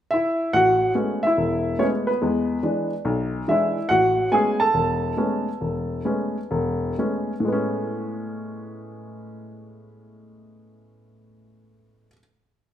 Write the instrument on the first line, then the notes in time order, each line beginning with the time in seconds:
grand piano
0.11 E4 E5
0.53 A1 F#4 F#5
0.95 G#3 A3 B3 C#4
1.23 E4 E5
1.37 E1
1.79 G#3 A3 B3 C#4 C#5
1.84 C#4
2.07 B3 B4
2.22 E2 G#3
2.63 E3 G#3 D4
3.05 B1
3.48 E3 G#3 D4 E4 E5
3.89 A1 F#4 F#5
4.31 G#3 A3 B3 C#4 G#4 G#5
4.60 A4 A5
4.74 E1
5.17 G#3 A3 B3 C#4
5.61 E1
6.05 G#3 A3 B3 C#4
6.51 E1
6.98 G#3 A3 B3 C#4
7.40 A2
7.45 G#3 B3
7.52 C#4